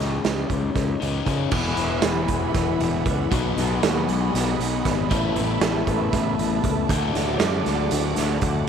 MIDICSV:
0, 0, Header, 1, 5, 480
1, 0, Start_track
1, 0, Tempo, 511509
1, 1435, Time_signature, 7, 3, 24, 8
1, 8154, End_track
2, 0, Start_track
2, 0, Title_t, "String section"
2, 0, Program_c, 0, 48
2, 1421, Note_on_c, 0, 80, 64
2, 1422, Note_on_c, 0, 83, 73
2, 1423, Note_on_c, 0, 78, 60
2, 1425, Note_on_c, 0, 76, 63
2, 3090, Note_off_c, 0, 80, 0
2, 3091, Note_off_c, 0, 83, 0
2, 3092, Note_off_c, 0, 76, 0
2, 3128, Note_on_c, 0, 75, 71
2, 3129, Note_on_c, 0, 80, 65
2, 3136, Note_on_c, 0, 83, 78
2, 4752, Note_off_c, 0, 78, 0
2, 4782, Note_off_c, 0, 75, 0
2, 4782, Note_off_c, 0, 80, 0
2, 4795, Note_on_c, 0, 71, 67
2, 4798, Note_on_c, 0, 76, 66
2, 4806, Note_on_c, 0, 81, 61
2, 6446, Note_on_c, 0, 74, 67
2, 6448, Note_off_c, 0, 83, 0
2, 6454, Note_on_c, 0, 78, 61
2, 6455, Note_off_c, 0, 71, 0
2, 6456, Note_on_c, 0, 86, 72
2, 6457, Note_off_c, 0, 76, 0
2, 8121, Note_off_c, 0, 74, 0
2, 8124, Note_off_c, 0, 81, 0
2, 8126, Note_off_c, 0, 86, 0
2, 8154, Note_off_c, 0, 78, 0
2, 8154, End_track
3, 0, Start_track
3, 0, Title_t, "Overdriven electric guitar"
3, 0, Program_c, 1, 29
3, 0, Note_on_c, 1, 49, 83
3, 0, Note_on_c, 1, 56, 82
3, 0, Note_on_c, 1, 61, 84
3, 0, Note_on_c, 1, 63, 83
3, 932, Note_off_c, 1, 49, 0
3, 936, Note_off_c, 1, 56, 0
3, 940, Note_off_c, 1, 61, 0
3, 944, Note_off_c, 1, 63, 0
3, 945, Note_on_c, 1, 49, 68
3, 956, Note_on_c, 1, 56, 66
3, 961, Note_on_c, 1, 61, 72
3, 967, Note_on_c, 1, 63, 70
3, 1170, Note_off_c, 1, 63, 0
3, 1175, Note_off_c, 1, 49, 0
3, 1179, Note_off_c, 1, 61, 0
3, 1181, Note_off_c, 1, 56, 0
3, 1182, Note_on_c, 1, 63, 71
3, 1191, Note_on_c, 1, 61, 77
3, 1200, Note_on_c, 1, 56, 73
3, 1205, Note_on_c, 1, 49, 61
3, 1414, Note_off_c, 1, 63, 0
3, 1415, Note_off_c, 1, 49, 0
3, 1418, Note_off_c, 1, 61, 0
3, 1419, Note_on_c, 1, 52, 82
3, 1423, Note_off_c, 1, 56, 0
3, 1428, Note_on_c, 1, 59, 90
3, 1429, Note_on_c, 1, 64, 88
3, 1435, Note_on_c, 1, 68, 96
3, 1440, Note_on_c, 1, 71, 89
3, 3091, Note_off_c, 1, 52, 0
3, 3096, Note_off_c, 1, 64, 0
3, 3100, Note_off_c, 1, 68, 0
3, 3108, Note_on_c, 1, 47, 79
3, 3110, Note_on_c, 1, 54, 84
3, 3112, Note_off_c, 1, 59, 0
3, 3116, Note_on_c, 1, 59, 93
3, 3116, Note_on_c, 1, 63, 90
3, 3120, Note_on_c, 1, 66, 89
3, 3123, Note_off_c, 1, 71, 0
3, 3126, Note_on_c, 1, 71, 92
3, 4774, Note_off_c, 1, 47, 0
3, 4775, Note_off_c, 1, 54, 0
3, 4778, Note_off_c, 1, 59, 0
3, 4778, Note_off_c, 1, 63, 0
3, 4780, Note_off_c, 1, 66, 0
3, 4781, Note_on_c, 1, 57, 84
3, 4783, Note_off_c, 1, 71, 0
3, 4792, Note_on_c, 1, 59, 92
3, 4798, Note_on_c, 1, 64, 90
3, 4802, Note_on_c, 1, 69, 98
3, 6451, Note_off_c, 1, 57, 0
3, 6456, Note_off_c, 1, 59, 0
3, 6459, Note_off_c, 1, 64, 0
3, 6461, Note_off_c, 1, 69, 0
3, 6468, Note_on_c, 1, 50, 90
3, 6471, Note_on_c, 1, 54, 83
3, 6475, Note_on_c, 1, 57, 98
3, 6482, Note_on_c, 1, 62, 88
3, 6485, Note_on_c, 1, 69, 93
3, 8135, Note_off_c, 1, 50, 0
3, 8136, Note_off_c, 1, 54, 0
3, 8139, Note_off_c, 1, 57, 0
3, 8142, Note_off_c, 1, 62, 0
3, 8143, Note_off_c, 1, 69, 0
3, 8154, End_track
4, 0, Start_track
4, 0, Title_t, "Fingered electric bass"
4, 0, Program_c, 2, 33
4, 0, Note_on_c, 2, 37, 78
4, 168, Note_off_c, 2, 37, 0
4, 235, Note_on_c, 2, 37, 80
4, 408, Note_off_c, 2, 37, 0
4, 469, Note_on_c, 2, 37, 74
4, 644, Note_off_c, 2, 37, 0
4, 709, Note_on_c, 2, 37, 82
4, 884, Note_off_c, 2, 37, 0
4, 956, Note_on_c, 2, 37, 78
4, 1128, Note_off_c, 2, 37, 0
4, 1186, Note_on_c, 2, 49, 76
4, 1362, Note_off_c, 2, 49, 0
4, 1425, Note_on_c, 2, 28, 89
4, 1631, Note_off_c, 2, 28, 0
4, 1666, Note_on_c, 2, 28, 89
4, 1871, Note_off_c, 2, 28, 0
4, 1910, Note_on_c, 2, 28, 88
4, 2113, Note_off_c, 2, 28, 0
4, 2146, Note_on_c, 2, 28, 80
4, 2351, Note_off_c, 2, 28, 0
4, 2389, Note_on_c, 2, 28, 92
4, 2593, Note_off_c, 2, 28, 0
4, 2626, Note_on_c, 2, 28, 90
4, 2831, Note_off_c, 2, 28, 0
4, 2870, Note_on_c, 2, 37, 83
4, 3073, Note_off_c, 2, 37, 0
4, 3110, Note_on_c, 2, 35, 92
4, 3313, Note_off_c, 2, 35, 0
4, 3343, Note_on_c, 2, 35, 87
4, 3549, Note_off_c, 2, 35, 0
4, 3585, Note_on_c, 2, 39, 94
4, 3790, Note_off_c, 2, 39, 0
4, 3826, Note_on_c, 2, 35, 82
4, 4030, Note_off_c, 2, 35, 0
4, 4074, Note_on_c, 2, 35, 94
4, 4274, Note_off_c, 2, 35, 0
4, 4305, Note_on_c, 2, 35, 81
4, 4509, Note_off_c, 2, 35, 0
4, 4559, Note_on_c, 2, 32, 85
4, 4757, Note_off_c, 2, 32, 0
4, 4792, Note_on_c, 2, 33, 92
4, 4993, Note_off_c, 2, 33, 0
4, 5025, Note_on_c, 2, 33, 92
4, 5229, Note_off_c, 2, 33, 0
4, 5266, Note_on_c, 2, 33, 92
4, 5470, Note_off_c, 2, 33, 0
4, 5512, Note_on_c, 2, 33, 83
4, 5713, Note_off_c, 2, 33, 0
4, 5755, Note_on_c, 2, 33, 91
4, 5955, Note_off_c, 2, 33, 0
4, 5996, Note_on_c, 2, 33, 87
4, 6195, Note_off_c, 2, 33, 0
4, 6230, Note_on_c, 2, 37, 83
4, 6432, Note_off_c, 2, 37, 0
4, 6467, Note_on_c, 2, 38, 92
4, 6670, Note_off_c, 2, 38, 0
4, 6713, Note_on_c, 2, 38, 92
4, 6913, Note_off_c, 2, 38, 0
4, 6950, Note_on_c, 2, 42, 86
4, 7152, Note_off_c, 2, 42, 0
4, 7189, Note_on_c, 2, 38, 78
4, 7391, Note_off_c, 2, 38, 0
4, 7431, Note_on_c, 2, 38, 94
4, 7632, Note_off_c, 2, 38, 0
4, 7669, Note_on_c, 2, 38, 89
4, 7871, Note_off_c, 2, 38, 0
4, 7902, Note_on_c, 2, 38, 82
4, 8107, Note_off_c, 2, 38, 0
4, 8154, End_track
5, 0, Start_track
5, 0, Title_t, "Drums"
5, 0, Note_on_c, 9, 42, 52
5, 3, Note_on_c, 9, 38, 28
5, 94, Note_off_c, 9, 42, 0
5, 97, Note_off_c, 9, 38, 0
5, 230, Note_on_c, 9, 42, 68
5, 233, Note_on_c, 9, 38, 91
5, 324, Note_off_c, 9, 42, 0
5, 327, Note_off_c, 9, 38, 0
5, 468, Note_on_c, 9, 36, 74
5, 469, Note_on_c, 9, 42, 55
5, 561, Note_off_c, 9, 36, 0
5, 563, Note_off_c, 9, 42, 0
5, 709, Note_on_c, 9, 36, 87
5, 710, Note_on_c, 9, 42, 66
5, 712, Note_on_c, 9, 38, 30
5, 803, Note_off_c, 9, 36, 0
5, 803, Note_off_c, 9, 42, 0
5, 806, Note_off_c, 9, 38, 0
5, 955, Note_on_c, 9, 42, 53
5, 1049, Note_off_c, 9, 42, 0
5, 1187, Note_on_c, 9, 36, 68
5, 1189, Note_on_c, 9, 42, 51
5, 1281, Note_off_c, 9, 36, 0
5, 1283, Note_off_c, 9, 42, 0
5, 1420, Note_on_c, 9, 49, 115
5, 1426, Note_on_c, 9, 36, 112
5, 1514, Note_off_c, 9, 49, 0
5, 1519, Note_off_c, 9, 36, 0
5, 1660, Note_on_c, 9, 42, 64
5, 1753, Note_off_c, 9, 42, 0
5, 1894, Note_on_c, 9, 42, 84
5, 1897, Note_on_c, 9, 38, 100
5, 1988, Note_off_c, 9, 42, 0
5, 1991, Note_off_c, 9, 38, 0
5, 2141, Note_on_c, 9, 42, 68
5, 2145, Note_on_c, 9, 36, 76
5, 2235, Note_off_c, 9, 42, 0
5, 2239, Note_off_c, 9, 36, 0
5, 2388, Note_on_c, 9, 42, 89
5, 2389, Note_on_c, 9, 36, 103
5, 2391, Note_on_c, 9, 38, 33
5, 2482, Note_off_c, 9, 42, 0
5, 2483, Note_off_c, 9, 36, 0
5, 2484, Note_off_c, 9, 38, 0
5, 2631, Note_on_c, 9, 42, 70
5, 2725, Note_off_c, 9, 42, 0
5, 2869, Note_on_c, 9, 42, 70
5, 2870, Note_on_c, 9, 36, 75
5, 2963, Note_off_c, 9, 42, 0
5, 2964, Note_off_c, 9, 36, 0
5, 3112, Note_on_c, 9, 36, 111
5, 3115, Note_on_c, 9, 42, 98
5, 3206, Note_off_c, 9, 36, 0
5, 3208, Note_off_c, 9, 42, 0
5, 3356, Note_on_c, 9, 42, 63
5, 3359, Note_on_c, 9, 38, 31
5, 3450, Note_off_c, 9, 42, 0
5, 3453, Note_off_c, 9, 38, 0
5, 3593, Note_on_c, 9, 42, 87
5, 3596, Note_on_c, 9, 38, 97
5, 3687, Note_off_c, 9, 42, 0
5, 3690, Note_off_c, 9, 38, 0
5, 3834, Note_on_c, 9, 42, 67
5, 3928, Note_off_c, 9, 42, 0
5, 4082, Note_on_c, 9, 42, 88
5, 4085, Note_on_c, 9, 38, 33
5, 4176, Note_off_c, 9, 42, 0
5, 4179, Note_off_c, 9, 38, 0
5, 4321, Note_on_c, 9, 42, 65
5, 4415, Note_off_c, 9, 42, 0
5, 4554, Note_on_c, 9, 36, 73
5, 4554, Note_on_c, 9, 42, 65
5, 4557, Note_on_c, 9, 38, 33
5, 4648, Note_off_c, 9, 36, 0
5, 4648, Note_off_c, 9, 42, 0
5, 4651, Note_off_c, 9, 38, 0
5, 4793, Note_on_c, 9, 42, 91
5, 4795, Note_on_c, 9, 36, 117
5, 4887, Note_off_c, 9, 42, 0
5, 4889, Note_off_c, 9, 36, 0
5, 5030, Note_on_c, 9, 42, 64
5, 5124, Note_off_c, 9, 42, 0
5, 5266, Note_on_c, 9, 42, 81
5, 5269, Note_on_c, 9, 38, 104
5, 5360, Note_off_c, 9, 42, 0
5, 5363, Note_off_c, 9, 38, 0
5, 5510, Note_on_c, 9, 36, 79
5, 5510, Note_on_c, 9, 42, 65
5, 5604, Note_off_c, 9, 36, 0
5, 5604, Note_off_c, 9, 42, 0
5, 5752, Note_on_c, 9, 36, 103
5, 5753, Note_on_c, 9, 42, 91
5, 5755, Note_on_c, 9, 38, 33
5, 5846, Note_off_c, 9, 36, 0
5, 5847, Note_off_c, 9, 42, 0
5, 5849, Note_off_c, 9, 38, 0
5, 5997, Note_on_c, 9, 42, 71
5, 6091, Note_off_c, 9, 42, 0
5, 6229, Note_on_c, 9, 36, 76
5, 6229, Note_on_c, 9, 42, 68
5, 6323, Note_off_c, 9, 36, 0
5, 6323, Note_off_c, 9, 42, 0
5, 6470, Note_on_c, 9, 36, 114
5, 6474, Note_on_c, 9, 42, 102
5, 6563, Note_off_c, 9, 36, 0
5, 6567, Note_off_c, 9, 42, 0
5, 6710, Note_on_c, 9, 42, 67
5, 6712, Note_on_c, 9, 38, 32
5, 6803, Note_off_c, 9, 42, 0
5, 6806, Note_off_c, 9, 38, 0
5, 6940, Note_on_c, 9, 42, 86
5, 6943, Note_on_c, 9, 38, 99
5, 7034, Note_off_c, 9, 42, 0
5, 7037, Note_off_c, 9, 38, 0
5, 7188, Note_on_c, 9, 42, 75
5, 7191, Note_on_c, 9, 38, 35
5, 7282, Note_off_c, 9, 42, 0
5, 7285, Note_off_c, 9, 38, 0
5, 7421, Note_on_c, 9, 42, 93
5, 7515, Note_off_c, 9, 42, 0
5, 7658, Note_on_c, 9, 42, 68
5, 7660, Note_on_c, 9, 38, 33
5, 7751, Note_off_c, 9, 42, 0
5, 7754, Note_off_c, 9, 38, 0
5, 7895, Note_on_c, 9, 42, 70
5, 7902, Note_on_c, 9, 36, 76
5, 7989, Note_off_c, 9, 42, 0
5, 7996, Note_off_c, 9, 36, 0
5, 8154, End_track
0, 0, End_of_file